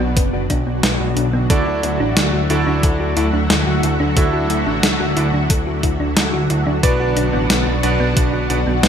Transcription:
0.00 0.15 B1 medium
0.00 1.46 B2 medium
0.00 1.46 D3 medium
0.00 8.88 F#3 medium
0.00 0.15 B3 loud
0.00 1.46 D4 medium
0.00 1.46 F#4 loud
0.17 0.32 F#1 loud
0.17 0.23 B4 loud
0.17 kick loud
0.17 closed hi-hat medium
0.33 0.48 F#1 medium
0.33 0.43 F#4 medium
0.50 0.65 B1 medium
0.50 0.60 D4 medium
0.50 kick medium
0.50 closed hi-hat medium
0.67 0.82 B1 medium
0.67 0.73 B3 medium
0.83 0.98 B1 loud
0.83 0.99 B4 medium
0.83 snare loud
0.83 closed hi-hat medium
1.00 1.15 B1 medium
1.00 1.10 F#4 medium
1.17 1.32 B1 medium
1.17 1.27 D4 medium
1.17 closed hi-hat medium
1.33 1.48 B1 medium
1.33 1.44 B3 loud
1.50 1.65 D2 loud
1.50 8.88 D3 medium
1.50 6.79 A3 medium
1.50 2.46 D4 medium
1.50 2.46 E4 medium
1.50 6.79 E4 medium
1.50 2.46 F#4 medium
1.50 6.79 F#4 medium
1.50 2.46 A4 medium
1.50 1.65 A4 medium
1.50 2.46 D5 medium
1.50 kick loud
1.50 closed hi-hat medium
1.67 1.82 D2 medium
1.67 1.77 F#4 medium
1.83 1.98 D2 medium
1.83 1.94 E4 medium
1.83 closed hi-hat medium
2.00 2.15 A1 medium
2.00 2.10 D4 loud
2.17 2.32 D2 loud
2.17 2.27 A4 medium
2.17 snare loud
2.17 closed hi-hat medium
2.33 2.48 D2 medium
2.33 2.44 F#4 medium
2.50 2.65 D2 medium
2.50 3.13 D4 medium
2.50 3.13 E4 medium
2.50 2.60 E4 medium
2.50 3.13 F#4 medium
2.50 3.13 A4 medium
2.50 3.13 D5 loud
2.50 closed hi-hat medium
2.67 2.82 D2 medium
2.67 2.82 D4 loud
2.83 2.98 D2 loud
2.83 2.89 A4 loud
2.83 kick loud
2.83 closed hi-hat medium
3.00 3.15 D2 medium
3.00 3.10 F#4 medium
3.17 3.32 D2 medium
3.17 3.25 D4 medium
3.17 3.27 E4 loud
3.17 3.25 E4 medium
3.17 3.25 F#4 medium
3.17 3.25 A4 medium
3.17 3.25 D5 medium
3.17 closed hi-hat medium
3.33 3.48 D2 medium
3.33 3.39 D4 medium
3.50 3.65 D2 loud
3.50 3.65 A4 medium
3.50 snare loud
3.50 closed hi-hat medium
3.67 3.82 D2 medium
3.67 3.77 F#4 medium
3.83 3.98 D2 medium
3.83 3.94 E4 medium
3.83 closed hi-hat medium
4.00 4.15 D2 medium
4.00 4.10 D4 loud
4.17 4.32 D2 loud
4.17 5.13 D4 medium
4.17 5.13 E4 medium
4.17 5.13 F#4 medium
4.17 5.13 A4 medium
4.17 4.27 A4 medium
4.17 5.13 E5 medium
4.17 kick loud
4.17 closed hi-hat medium
4.33 4.48 D2 medium
4.33 4.44 F#4 medium
4.50 4.65 D2 medium
4.50 4.60 E4 medium
4.50 closed hi-hat medium
4.67 4.82 A1 medium
4.67 4.82 D4 loud
4.83 4.98 D2 loud
4.83 4.89 A4 loud
4.83 snare loud
4.83 closed hi-hat medium
5.00 5.15 D2 medium
5.00 5.10 F#4 medium
5.17 5.32 D2 medium
5.17 5.25 D4 medium
5.17 5.27 E4 loud
5.17 5.25 E4 medium
5.17 5.25 F#4 medium
5.17 5.25 A4 medium
5.17 5.25 D5 medium
5.17 closed hi-hat medium
5.33 5.48 D2 medium
5.33 5.39 D4 medium
5.50 5.65 D2 medium
5.50 5.65 A4 medium
5.50 kick loud
5.50 closed hi-hat medium
5.67 5.82 D2 medium
5.67 5.77 F#4 medium
5.83 5.98 D2 medium
5.83 5.94 E4 medium
5.83 kick medium
5.83 closed hi-hat medium
6.00 6.15 D2 medium
6.00 6.10 D4 medium
6.17 6.32 D2 loud
6.17 6.27 A4 medium
6.17 snare loud
6.17 closed hi-hat medium
6.33 6.48 D2 medium
6.33 6.43 F#4 medium
6.50 6.65 D2 medium
6.50 6.60 E4 medium
6.50 closed hi-hat medium
6.67 6.82 D2 medium
6.67 6.82 D4 loud
6.83 6.98 B1 loud
6.83 8.88 B2 medium
6.83 7.79 B3 medium
6.83 7.79 D4 medium
6.83 8.88 D4 medium
6.83 7.79 F#4 medium
6.83 8.88 F#4 medium
6.83 6.89 B4 loud
6.83 7.79 B4 medium
6.83 7.79 D5 medium
6.83 kick loud
6.83 closed hi-hat medium
7.00 7.15 B1 medium
7.00 7.10 F#4 medium
7.17 7.32 B1 medium
7.17 7.27 D4 loud
7.17 closed hi-hat medium
7.33 7.48 A1 medium
7.33 7.39 B3 medium
7.50 7.65 B1 medium
7.50 7.65 B4 medium
7.50 snare loud
7.50 closed hi-hat medium
7.67 7.82 B1 medium
7.67 7.77 F#4 medium
7.83 7.98 B1 medium
7.83 8.46 B3 medium
7.83 8.46 D4 medium
7.83 7.93 D4 medium
7.83 8.46 F#4 medium
7.83 8.46 B4 medium
7.83 8.46 D5 loud
7.83 closed hi-hat medium
8.00 8.15 B1 medium
8.00 8.10 B3 loud
8.17 8.32 B1 loud
8.17 8.27 B4 medium
8.17 kick loud
8.17 closed hi-hat medium
8.33 8.48 B1 medium
8.33 8.44 F#4 medium
8.50 8.65 B1 medium
8.50 8.58 B3 medium
8.50 8.58 D4 medium
8.50 8.60 D4 medium
8.50 8.58 F#4 medium
8.50 8.58 B4 medium
8.50 8.58 D5 medium
8.50 closed hi-hat medium
8.67 8.82 B1 medium
8.67 8.82 B3 medium
8.83 8.88 B1 loud
8.83 8.88 B4 loud
8.83 snare loud
8.83 closed hi-hat medium

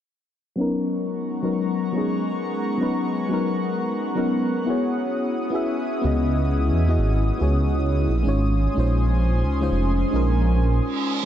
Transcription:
0.56 1.40 F#3 medium
0.56 4.64 G#3 medium
0.56 1.41 B3 medium
0.56 8.05 B3 medium
0.56 1.42 C#4 medium
0.56 8.05 F#5 medium
0.56 4.64 A#5 medium
0.56 4.64 C#6 medium
0.60 1.42 D#4 medium
0.60 1.43 A#4 loud
1.42 1.51 F#3 medium
1.42 1.51 B3 medium
1.42 1.51 C#4 medium
1.42 1.52 D#4 medium
1.42 1.52 A#4 loud
1.92 2.76 F#3 medium
1.92 2.78 B3 medium
1.92 2.78 C#4 medium
1.92 2.79 D#4 medium
1.98 2.80 G#4 medium
2.77 3.27 F#3 medium
2.77 3.29 B3 medium
2.77 3.29 C#4 medium
2.81 3.30 D#4 medium
2.81 3.31 B4 loud
3.29 4.13 F#3 medium
3.29 4.14 B3 medium
3.29 4.15 C#4 medium
3.29 4.15 D#4 medium
3.34 4.16 A#4 loud
4.15 4.23 F#3 medium
4.15 4.24 B3 medium
4.15 4.24 C#4 medium
4.15 4.24 D#4 medium
4.15 4.25 A#4 loud
4.65 5.49 B3 medium
4.65 8.05 C#4 medium
4.65 5.50 E4 medium
4.65 8.05 E4 medium
4.65 5.51 F#4 medium
4.65 11.25 D#6 medium
4.69 5.52 G#4 medium
4.69 5.52 C#5 medium
5.50 6.00 B3 medium
5.50 6.01 E4 medium
5.50 6.02 F#4 medium
5.50 6.03 G#4 medium
5.55 6.03 E5 loud
6.01 6.71 C#2 medium
6.01 6.86 B3 medium
6.01 6.87 E4 medium
6.01 6.87 F#4 medium
6.01 6.88 G#4 medium
6.07 6.89 D#5 loud
6.72 6.97 E2 medium
6.88 6.96 B3 medium
6.88 6.97 E4 medium
6.88 6.97 F#4 medium
6.88 6.97 G#4 medium
6.88 6.98 D#5 loud
6.98 7.31 G#1 medium
7.37 8.07 C#2 loud
7.37 8.06 B3 medium
7.37 8.07 E4 medium
7.37 8.08 F#4 medium
7.42 8.08 G#4 medium
7.42 8.09 C#5 medium
8.09 8.24 A#1 medium
8.09 11.25 C#4 medium
8.09 11.25 G#5 medium
8.09 11.25 C6 medium
8.23 8.67 G#1 medium
8.23 8.73 G#3 medium
8.23 8.74 C#4 medium
8.23 8.75 D#4 medium
8.27 8.76 F4 medium
8.27 8.76 C#5 loud
8.74 9.44 A#1 medium
8.74 9.59 G#3 medium
8.74 9.59 C#4 medium
8.74 9.60 D#4 medium
8.74 9.61 F4 medium
8.79 9.61 C5 loud
9.45 9.70 C#2 medium
9.60 9.69 G#3 medium
9.60 9.69 C#4 medium
9.60 9.70 D#4 medium
9.60 9.70 F4 medium
9.60 9.70 C5 loud
9.71 10.04 F1 loud
10.10 10.80 A#1 medium
10.10 10.95 G#3 medium
10.10 10.96 C#4 medium
10.10 10.96 D#4 medium
10.10 10.97 F4 medium
10.16 10.98 A#4 medium
10.81 reverse cymbal medium

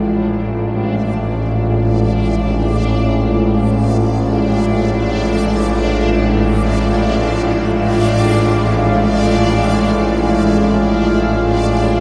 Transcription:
0.00 12.00 A1 medium
0.00 12.00 A2 medium
0.00 12.00 G#3 medium
0.00 12.00 D4 medium
0.00 12.00 F4 medium
0.00 12.00 G#4 medium
0.00 12.00 D5 medium
0.00 12.00 F5 medium

